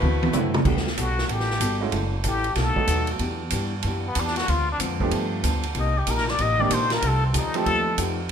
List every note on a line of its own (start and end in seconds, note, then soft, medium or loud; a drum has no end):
0.00 0.33 D2 medium
0.00 0.23 D3 medium
0.00 0.54 A3 medium
0.00 0.24 C4 medium
0.00 0.54 E4 medium
0.00 0.54 F#4 medium
0.00 0.24 F#4 medium
0.00 0.54 B4 medium
0.00 high tom soft
0.04 0.24 B4 medium
0.23 high tom medium
0.33 0.64 F#2 medium
0.33 0.56 D3 medium
0.33 0.52 F#3 medium
0.33 0.52 A3 medium
0.33 0.52 B3 medium
0.33 0.52 C4 medium
0.33 0.56 C4 medium
0.33 0.52 E4 medium
0.33 0.56 F#4 medium
0.33 0.56 B4 medium
0.33 hi-hat pedal medium
0.33 mid tom medium
0.54 mid tom loud
0.65 0.96 D2 medium
0.65 0.84 G3 medium
0.65 0.87 G3 soft
0.65 0.84 A3 soft
0.65 0.84 B3 soft
0.65 0.87 B3 medium
0.65 0.84 D4 soft
0.65 0.84 F#4 medium
0.65 0.88 F#4 medium
0.65 0.88 A4 medium
0.65 kick medium
0.65 crash medium
0.77 snare soft
0.87 snare soft
0.97 1.28 B1 medium
0.97 1.19 G3 medium
0.97 1.20 B3 medium
0.97 1.20 F#4 medium
0.97 1.34 F#4 medium
0.97 1.20 A4 medium
0.97 kick soft
0.97 hi-hat pedal medium
0.97 ride medium
1.18 snare soft
1.29 1.60 A1 medium
1.29 1.51 G3 soft
1.29 1.51 B3 soft
1.29 1.52 F#4 medium
1.29 1.83 G4 medium
1.29 1.52 A4 medium
1.29 kick soft
1.29 ride medium
1.40 snare soft
1.51 snare soft
1.60 1.92 G1 medium
1.60 1.82 G3 medium
1.60 1.83 B3 medium
1.60 1.83 F#4 medium
1.60 1.83 A4 medium
1.60 kick soft
1.60 hi-hat pedal medium
1.60 ride medium
1.81 1.92 G#3 medium
1.81 1.92 A3 medium
1.81 1.92 C#4 medium
1.81 1.92 E4 medium
1.81 1.92 F#4 medium
1.92 2.24 F#1 medium
1.92 2.14 F#3 soft
1.92 2.14 C#4 medium
1.92 2.15 E4 medium
1.92 2.15 A4 medium
1.92 kick soft
1.92 ride medium
2.24 2.55 A1 medium
2.24 2.46 F#3 medium
2.24 2.47 C#4 medium
2.24 2.47 E4 medium
2.24 2.61 G4 medium
2.24 2.47 A4 medium
2.24 kick soft
2.24 hi-hat pedal medium
2.24 ride medium
2.44 ride soft
2.56 2.75 B1 medium
2.56 2.78 B2 medium
2.56 2.78 A3 medium
2.56 2.79 D#4 medium
2.56 2.79 F#4 medium
2.56 kick soft
2.56 snare soft
2.56 ride medium
2.60 3.10 A4 medium
2.76 3.18 F#3 medium
2.76 3.18 A3 medium
2.76 3.18 B3 medium
2.76 3.18 D#4 medium
2.76 3.18 F#4 medium
2.76 kick medium
2.87 3.19 D#2 medium
2.87 3.10 B2 medium
2.87 3.10 A3 medium
2.87 3.10 D#4 medium
2.87 3.11 F#4 medium
2.87 kick soft
2.87 hi-hat pedal medium
2.87 ride medium
3.07 ride soft
3.19 3.51 E2 medium
3.19 3.41 E3 medium
3.19 3.42 B3 medium
3.19 3.42 D4 medium
3.19 3.43 G4 medium
3.19 kick soft
3.19 ride medium
3.50 3.83 G2 medium
3.50 3.73 E3 medium
3.50 3.74 B3 medium
3.50 3.74 D4 medium
3.50 3.74 G4 medium
3.50 kick soft
3.50 hi-hat pedal medium
3.50 ride medium
3.83 4.15 F#2 medium
3.83 4.06 E3 medium
3.83 4.06 B3 medium
3.83 4.07 D4 medium
3.83 kick soft
3.83 ride medium
3.88 4.07 G4 medium
4.07 4.21 B3 medium
4.15 4.47 E2 medium
4.15 4.38 E3 medium
4.15 4.38 B3 medium
4.15 4.38 D4 medium
4.15 4.39 G4 medium
4.15 kick soft
4.15 hi-hat pedal medium
4.15 ride medium
4.20 4.36 D4 medium
4.27 snare soft
4.36 4.51 F#4 loud
4.36 snare soft
4.36 ride medium
4.48 4.79 D2 medium
4.48 4.69 D3 soft
4.48 4.70 G#3 soft
4.48 4.70 C4 soft
4.48 4.69 F4 loud
4.48 4.70 F4 soft
4.48 kick soft
4.48 ride medium
4.71 4.77 D4 loud
4.79 5.11 F2 medium
4.79 5.01 D3 medium
4.79 5.01 G#3 medium
4.79 5.01 C4 medium
4.79 5.02 F4 medium
4.79 kick soft
4.79 hi-hat pedal medium
4.79 ride medium
5.00 5.42 F3 medium
5.00 5.42 A3 medium
5.00 5.42 B3 medium
5.00 5.42 D4 medium
5.00 5.42 G4 medium
5.00 kick medium
5.09 5.32 G2 medium
5.09 5.43 G2 medium
5.09 5.33 F3 medium
5.09 5.33 B3 medium
5.09 5.34 D4 medium
5.09 kick soft
5.09 ride medium
5.43 5.74 D2 medium
5.43 5.65 G2 medium
5.43 5.65 F3 medium
5.43 5.65 B3 medium
5.43 5.65 D4 medium
5.43 kick soft
5.43 hi-hat pedal medium
5.43 ride medium
5.63 ride medium
5.75 6.06 C2 medium
5.75 5.97 C3 soft
5.75 5.97 A#3 soft
5.75 5.97 D#4 medium
5.75 5.98 G4 medium
5.75 kick soft
5.75 ride medium
5.80 6.00 D#5 medium
5.98 6.12 G4 medium
6.07 6.38 A#1 medium
6.07 6.28 C3 medium
6.07 6.29 A#3 medium
6.07 6.29 D#4 medium
6.07 6.29 G4 medium
6.07 6.31 A#4 medium
6.07 kick soft
6.07 hi-hat pedal medium
6.07 ride medium
6.18 snare soft
6.28 6.43 D5 loud
6.28 snare soft
6.39 6.70 A1 medium
6.39 6.60 C3 medium
6.39 6.61 A#3 medium
6.39 6.61 D#4 medium
6.39 6.62 G4 medium
6.39 6.62 D#5 loud
6.39 kick soft
6.39 ride medium
6.59 6.70 D#3 medium
6.59 6.70 A#3 medium
6.59 6.70 C4 medium
6.59 6.70 D4 medium
6.59 6.70 G4 medium
6.59 6.75 D5 loud
6.69 7.02 A#1 medium
6.69 6.91 C3 medium
6.69 6.92 A#3 medium
6.69 6.92 D#4 medium
6.69 6.92 G4 medium
6.69 kick soft
6.69 hi-hat pedal medium
6.69 ride medium
6.73 6.92 C5 medium
6.90 7.09 A#4 loud
6.90 snare soft
6.90 ride medium
7.02 7.34 C2 medium
7.02 7.24 F3 soft
7.02 7.24 A3 soft
7.02 7.24 D#4 medium
7.02 7.25 G4 medium
7.02 kick soft
7.02 ride medium
7.07 7.25 A4 medium
7.26 7.39 C4 medium
7.33 7.66 D2 medium
7.33 7.55 F3 medium
7.33 7.56 A3 medium
7.33 7.56 D#4 medium
7.33 7.56 G4 medium
7.33 kick soft
7.33 hi-hat pedal medium
7.33 ride medium
7.38 7.56 D#4 medium
7.54 7.96 F3 medium
7.54 7.96 A3 medium
7.54 7.96 C4 medium
7.54 7.97 D#4 medium
7.54 7.97 G4 medium
7.54 7.97 A4 loud
7.54 ride soft
7.66 7.97 D#2 medium
7.66 7.88 F3 soft
7.66 7.88 A3 medium
7.66 7.88 D#4 medium
7.66 7.89 G4 medium
7.66 kick soft
7.66 ride medium
7.98 8.29 F2 medium
7.98 8.20 F3 medium
7.98 8.20 A3 medium
7.98 8.20 D#4 medium
7.98 8.21 G4 medium
7.98 kick soft
7.98 hi-hat pedal medium
7.98 ride medium